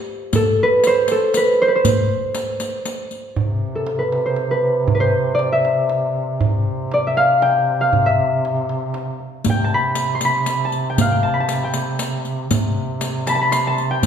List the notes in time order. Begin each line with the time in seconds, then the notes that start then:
Already playing: F4 G4 C5
0.09 tombak ka
0.33 A4, riq, tombak dum
0.59 B4, tombak ka
0.84 C5, riq, tombak tek
1.08 A4, riq, tombak tek
1.34 B4, riq, tombak tek
1.58 C5, tombak ka
1.68 B4
1.75 C5
1.84 riq, tombak dum
2.34 riq, tombak tek
2.60 riq, tombak tek
2.85 riq, tombak tek
3.11 riq, tombak ka
3.36 C3, tombak dum
3.75 A4
3.87 tombak tek
3.99 B4
4.12 tombak tek
4.26 C5
4.36 tombak tek
4.51 B4
4.63 tombak ka
4.88 tombak dum
4.95 B4
5.00 C5
5.35 D5
5.39 tombak tek
5.52 E5
5.65 tombak tek
5.89 tombak tek
6.15 tombak ka
6.41 C3, tombak dum
6.92 D5, tombak tek
7.07 E5
7.17 F5, tombak tek
7.42 G5, tombak tek
7.67 tombak ka
7.81 F5
7.93 tombak dum
8.06 E5
8.19 tombak ka
8.45 tombak tek
8.69 tombak tek
8.94 tombak tek
9.20 tombak ka
9.44 C3, riq, tombak dum
9.50 G5
9.64 A5
9.74 B5
9.95 riq, tombak tek
10.15 C6
10.21 riq, tombak tek
10.25 B5
10.46 riq, tombak tek
10.65 A5
10.72 riq, tombak ka
10.90 G5
10.98 F5, riq, tombak dum
11.12 G5
11.23 A5
11.34 B5
11.40 A5
11.49 riq, tombak tek
11.64 G5
11.74 riq
11.99 riq, tombak tek
12.25 riq
12.50 C3, riq, tombak dum
13.01 riq, tombak tek
13.27 A5 B5, riq, tombak tek
13.35 A5
13.41 B5
13.52 C6, riq, tombak tek
13.67 A5
13.78 riq
13.91 G5
14.03 riq, tombak dum